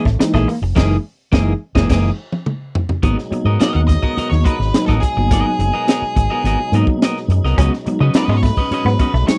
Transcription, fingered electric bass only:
0.05 A1
0.20 muted fingered electric bass stroke
0.34 A#1
0.61 F1
0.77 F#1
1.33 F#1
1.75 F#1
1.89 F#1
3.03 G#1
3.31 muted fingered electric bass stroke
3.45 G#2
3.60 muted fingered electric bass stroke
3.75 D#2
4.17 muted fingered electric bass stroke
4.32 D#2
4.59 G#1
4.75 muted fingered electric bass stroke
4.87 A1
5.17 G1
5.31 G#1
5.59 F#1
6.02 muted fingered electric bass stroke
6.16 G#1
6.44 G#1
6.72 G#2
7.28 F#2
7.43 C2
7.58 C#2
7.87 muted fingered electric bass stroke
8.01 C#3
8.14 muted fingered electric bass stroke
8.28 G#2
8.71 muted fingered electric bass stroke
8.85 G#2
9.14 B1
9.28 muted fingered electric bass stroke

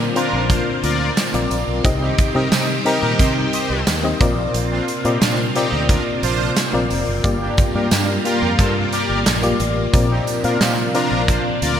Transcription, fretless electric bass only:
0.33 A#1
0.83 D2
1.34 A#1
1.51 A#1
1.68 B1
1.85 C2
2.35 C3
2.52 C3
3.03 A#2
3.19 C3
3.70 C2
3.87 D#2
4.21 A#1
4.54 A#1
5.05 A#2
5.22 A#2
5.72 D2
6.23 A#1
6.73 A#1
6.90 F1
7.07 F#1
7.24 G1
7.75 G2
7.91 G2
8.42 F2
8.59 G2
9.09 G1
9.26 A#1
9.60 A1
9.94 A#1
10.44 A#2
10.61 A#2
11.11 A#1
11.62 D2

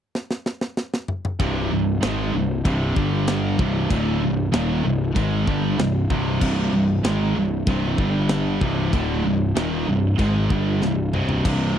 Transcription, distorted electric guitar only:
1.40 C2 G2 C3
1.72 C2 G2
2.02 G#2 D#3 G#3
2.34 C2 G2
2.65 C2 G2 C3
2.95 G2 D3 G3
3.59 C2 G2 C3
3.90 D2 A2 D3
4.21 C2 G2
4.52 D#2 A#2 D#3
4.84 C2 G2
5.15 G#2 D#3 G#3
5.47 G2 D3 G3
5.78 C2 G2
6.10 C2 G2 C3
6.42 C2 G2 C3
6.73 C2 G2
7.04 G#2 D#3 G#3
7.36 C2 G2
7.68 C2 G2 C3
7.99 G2 D3 G3
8.62 C2 G2 C3
8.93 D2 A2 D3
9.25 C2 G2
9.55 D#2 A#2 D#3
9.87 C2 G2
10.18 G#2 D#3 G#3
10.50 G2 D3 G3
10.82 C2 G2
11.14 C2 G2 C3
11.45 C2 G2 C3

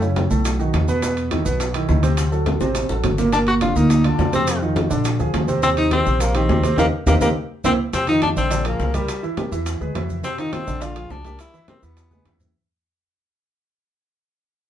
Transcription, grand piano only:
0.01 C#3 C#4 E4
0.30 A2 A3 A4
0.59 D#3 D#4 F#4
0.88 B2 B3 B4
1.03 B2 B3 B4
1.31 D#3 D#4 E4
1.45 B2 B3 B4
1.74 D#3 D#4 E4
1.88 D#3 D#4 E4
2.03 C3 C4 C5
2.32 F#3 F#4 A4
2.61 C3 C4 C5
2.89 F#3 F#4 A4
3.18 A#2 A#3 A#4
3.33 A#2 A#3 A#4
3.61 D3 D4 F4
3.75 A#2 A#3 A#4
4.05 D3 D4 F4
4.19 D3 D4 F4
4.33 C3 C4 C5
4.62 D#3 D#4 F4
4.90 D3 D4 D5
5.19 F3 F4 G#4
5.48 C3 C4 C5
5.63 C3 C4 C5
5.91 D#3 D#4 G4
6.06 C3 C4 C5
6.35 D#3 D#4 G4
6.49 D#3 D#4 G4
6.63 C3 C4 C5
6.78 C4 D#4 G4
7.07 C4 D#4 G4
7.22 C4 D#4 G4
7.65 A#3 C4 E4
7.93 C3 C4 C5
8.08 D#3 D#4 F4
8.36 D3 D4 D5
8.51 D3 D4 D5
8.65 F3 F4 G#4
8.94 G3 G4 A#4
9.23 E3 E4 E5
9.37 G3 G4 A#4
9.52 E3 E4 E5
9.81 G#3 G#4 B4
9.95 E3 E4 E5
10.23 C3 C4 C5
10.38 D#3 D#4 F4
10.67 D3 D4 D5
10.81 D3 D4 D5
10.96 F3 F4 G#4
11.25 G3 G4 A#4
11.54 E3 E4 E5
11.68 G3 G4 A#4
11.82 E3 E4 E5
12.11 G#3 G#4 B4
12.25 E3 E4 E5

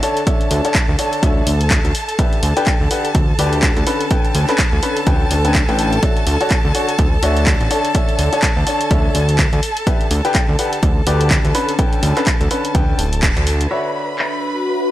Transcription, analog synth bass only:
0.51 D2
0.89 D2
1.23 D2
1.47 D2
1.85 D2
2.43 D2
2.81 D2
3.15 D2
3.39 D2
3.77 D2
4.35 D2
4.73 D2
5.07 D2
5.31 D2
5.69 A1
6.27 D2
6.65 D2
6.99 D2
7.23 D2
7.61 A1
8.19 D2
8.57 D2
8.91 D2
9.15 D2
9.53 D2
10.11 D2
10.49 D2
10.83 D2
11.07 D2
11.45 D2
12.03 D2
12.41 D2
12.75 D2
12.99 D1
13.37 D2

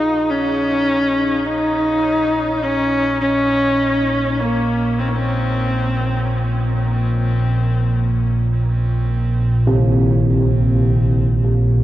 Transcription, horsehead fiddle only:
Already playing: D#4
0.30 C#4
1.46 D#4
2.63 C#4
3.21 C#4
4.40 A#3
4.99 C4
5.09 A#3
5.15 C4

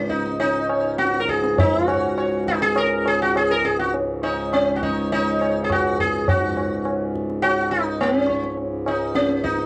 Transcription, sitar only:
Already playing: C#4
0.09 D#4
0.40 D#4
0.69 C#5
0.98 F#4
1.20 A#4
1.29 G#4
1.59 D#4
1.88 F#4 C#5
2.17 C#5
2.48 D#4
2.62 G#4
2.77 A#4
3.07 G#4
3.22 F#4
3.37 G#4
3.51 A#4
3.65 G#4
3.79 F#4
4.23 D#4 C#5
4.53 C#4
4.76 F#4
4.83 D#4 C#5
5.12 D#4 C#5
5.41 C#5
5.64 G#4
5.72 F#4
6.00 G#4
6.29 F#4
7.42 F#4
7.71 D#4
8.01 C#4
8.29 C#5
8.88 D#4
9.15 C#4
9.44 D#4

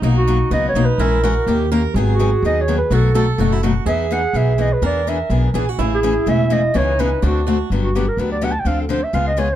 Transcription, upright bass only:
0.02 B1
0.51 C#2
0.74 B1
0.98 A#1
1.46 D#2
1.94 G#1
2.42 D#2
2.90 B1
3.38 F#1
3.86 E2
4.33 B1
4.82 E2
5.30 B1
5.54 A#1
5.78 A1
6.27 E1
6.75 C#2
7.23 D2
7.70 G1
8.17 D2
8.65 D2
9.13 C#2

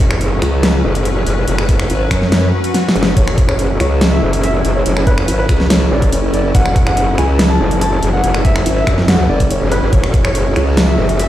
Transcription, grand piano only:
3.17 C#5
3.49 C#5
3.80 C#5
4.12 E5
4.43 E5
4.76 C#5
5.07 B4
5.39 B4
5.70 C#5
5.91 D5
6.13 C#5
6.34 D5
6.55 F#5
6.87 F#5
7.18 G#5
7.50 A5
7.81 A5
8.13 F#5
8.45 E5
8.77 E5
9.08 F#5
9.29 D5
9.51 C#5
9.72 B4
9.93 C#5
10.25 C#5
10.56 C#5
10.88 E5
11.20 E5

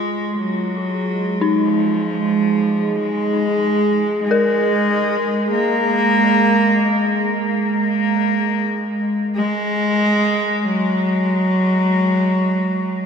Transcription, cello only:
Already playing: G#3
0.38 F#3
1.67 F3
2.95 G#3
4.23 G#3
5.51 A#3
9.35 G#3
10.64 F#3

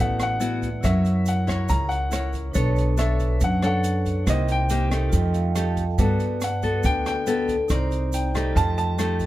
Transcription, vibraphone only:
Already playing: E4 B4 D5 F#5
0.81 E4 A#4
0.85 C#5 F#5
2.52 D4 B4 C#5
2.57 A5
4.23 D#4 A#4
4.28 C5 G5
5.09 F4 A4 D#5
5.15 G5
5.33 F5
5.55 A5
5.98 B4 D5 A5
7.68 D#4 C5 D5
7.73 A#5
8.53 F4 A4
8.57 D#5 G5

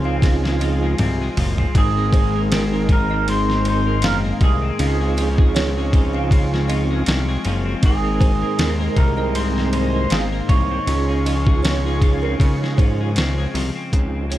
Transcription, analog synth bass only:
Already playing: C#2
0.99 C2
1.37 F#1
1.75 G#1
4.03 F#1
4.41 C2
4.79 C#2
7.07 C2
7.45 F#1
7.83 G#1
8.59 D#2
8.96 C2
10.11 G#1
10.49 C2
10.87 C#2
12.40 C#3
12.78 G#2
13.17 C#2
13.54 C2
13.93 C#2

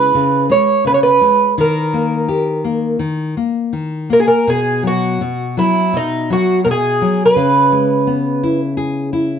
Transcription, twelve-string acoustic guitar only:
Already playing: B4
0.52 C#5
0.87 B4
0.94 C#5
1.03 B4
1.61 A#4
4.13 A#4
4.20 G#4
4.28 A#4
4.50 G#4
4.87 F#4
5.59 E4
5.97 D#4
6.33 F#4
6.65 A#4
6.71 G#4
7.26 B4

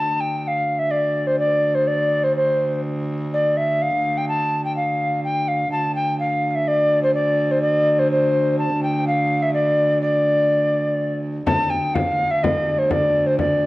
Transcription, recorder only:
Already playing: A5
0.21 G5
0.44 G5
0.48 F5
0.79 E5
0.91 D5
1.27 C5
1.39 D5
1.75 C5
1.87 D5
2.24 C5
2.36 C5
3.33 D5
3.57 E5
3.82 F5
4.18 G5
4.29 A5
4.65 G5
4.76 F5
5.24 G5
5.48 F5
5.72 A5
5.95 G5
6.19 F5
6.51 F5
6.55 E5
6.68 D5
7.03 C5
7.14 D5
7.51 C5
7.62 D5
7.99 C5
8.11 C5
8.59 A5
8.83 G5
9.07 F5
9.43 E5
9.54 D5
10.02 D5
11.46 A5
11.70 G5
11.95 F5
12.31 E5
12.43 D5
12.79 C5
12.91 D5
13.27 C5
13.39 D5

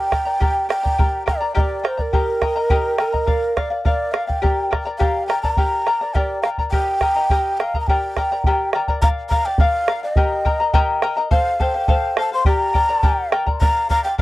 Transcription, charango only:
Already playing: G4 A#4 D5 G5 A#5
0.11 A#4 D5 G5 A#5
0.25 A#4 D5 A#5
0.40 G4 A#4 D5 G5 A#5
0.69 A#4 D5 G5 A#5
0.83 A#4 D5 A#5
0.98 G4 A#4 D5 G5 A#5
1.26 A#4 D5 G5 A#5
1.41 A#4 D5 A#5
1.55 G4 A#4 D5 G5 A#5
1.84 A#4 D5 G5 A#5
1.97 A#4 D5 A#5
2.13 G4 A#4 D#5 G5 A#5
2.41 A#4 D#5 G5 A#5
2.56 A#4 D#5 A#5
2.70 G4 A#4 D#5 G5 A#5
2.98 A#4 D#5 G5 A#5
3.12 A#4 D#5 A#5
3.26 A#4 D5 F5
3.56 A#4 D5 F5
3.70 D5 F5
3.85 A#4 D5 F5
4.13 A#4 D5 F5
4.27 D5 F5
4.42 G4 A#4 D5 G5 A#5
4.71 A#4 D5 G5 A#5
4.85 A#4 D5 A#5
4.99 G4 A#4 D5 G5 A#5
5.28 A#4 D5 G5 A#5
5.43 A#4 D5 A#5
5.57 G4 A#4 D5 G5 A#5
5.86 A#4 D5 G5 A#5
6.01 A#4 D5 A#5
6.15 G4 A#4 D5 G5 A#5
6.44 A#4 D5 G5 A#5
6.59 A#4 D5 A#5
6.73 G4 A#4 D#5 G5 A#5
7.01 A#4 D#5 G5 A#5
7.16 A#4 D#5 A#5
7.30 G4 A#4 D#5 G5 A#5
7.59 A#4 D#5 G5 A#5
7.75 A#4 D#5 A#5
7.89 G4 A#4 D5 G5 A#5
8.17 A#4 D5 G5 A#5
8.32 A#4 D5 A#5
8.47 G4 A#4 D5 G5 A#5
8.74 A#4 D5 G5 A#5
8.88 A#4 D5 A#5
9.02 A#4 D5 F5
9.31 A#4 D5 F5
9.46 D5 F5
9.60 A#4 D5 F5
9.88 A#4 D5 F5
10.03 D5 F5
10.17 G4 A#4 D#5 G5 A#5
10.45 A#4 D#5 G5 A#5
10.60 A#4 D#5 A#5
10.73 G4 A#4 D#5 G5 A#5
11.02 A#4 D#5 G5 A#5
11.17 A#4 D#5 A#5
11.31 A4 C5 F5
11.60 A4 C5 F5
11.74 C5 F5
11.88 A4 C5 F5
12.17 A4 C5 F5
12.32 C5 F5
12.46 G4 A#4 D5 G5 A#5
12.74 A#4 D5 G5 A#5
12.89 A#4 D5 A#5
13.03 G4 A#4 D5 G5 A#5
13.32 A#4 D5 G5 A#5
13.46 A#4 D5 A#5
13.61 A#4 D5 F5
13.90 A#4 D5 F5
14.05 D5 F5
14.18 A#4

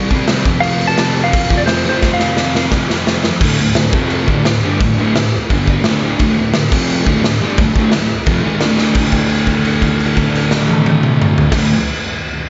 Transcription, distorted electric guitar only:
Already playing: G3 C4
0.11 C3 G3 C4
0.28 C3 G3 C4
0.45 F2 C3 F3
1.32 F2 C3 F3
1.51 F2 C3 F3
1.86 F2 C3 F3
2.71 F2 C3
2.75 F3
2.89 F2 C3 F3
3.42 D2 A2 D3
3.59 D2 A2
3.77 D2 A2
3.93 F2 C3 F3
4.28 D2 A2 D3
4.45 D2 A2
4.63 G2 D3 G3
4.81 D2 A2
4.97 D2 A2 D3
5.16 D2 A2
5.50 G2 D3 G3
5.84 D2 A2 D3
6.18 D2 A2 D3
6.37 D2 A2
6.54 D2 A2
6.72 F2 C3 F3
7.06 D2 A2 D3
7.23 D2 A2
7.41 G2 D3 G3
7.60 D2 A2
7.76 D2 A2 D3
7.94 D2 A2
8.28 F2 C3 F3
8.42 G#2 D#3 G#3
8.61 D2 A2 D3
8.94 D2 A2
8.98 D3
11.51 D2 A2 D3

